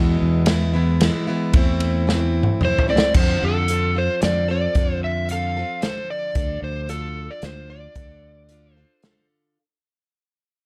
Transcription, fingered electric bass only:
Already playing: E2
0.22 E2
1.54 E2
3.15 F2
3.42 F2
4.23 F2
4.76 F2
6.36 D2
6.62 D2
7.43 D2
7.96 D2

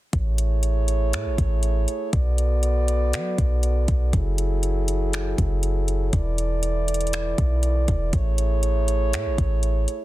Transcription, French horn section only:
0.13 A3 E4 G#4 C#5
2.13 B3 F#4 A4 D5
4.13 F#3 E4 G#4
6.13 E3 E4 D5
8.13 A3 E4 G#4 C#5

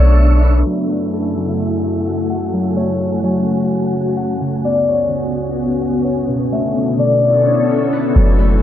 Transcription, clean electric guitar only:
0.66 F#3
0.90 A3
1.37 F#3
2.07 F#4
2.30 F#5
2.53 F#3
2.77 A3
3.24 F#3
3.95 F#4
4.17 F#5
4.41 C#3
4.65 B3
5.11 C#3
5.81 F#4
6.05 C#5
6.28 B2
6.52 A3
6.99 B2
7.69 C#4
7.93 D4
8.16 F#3
8.39 A3

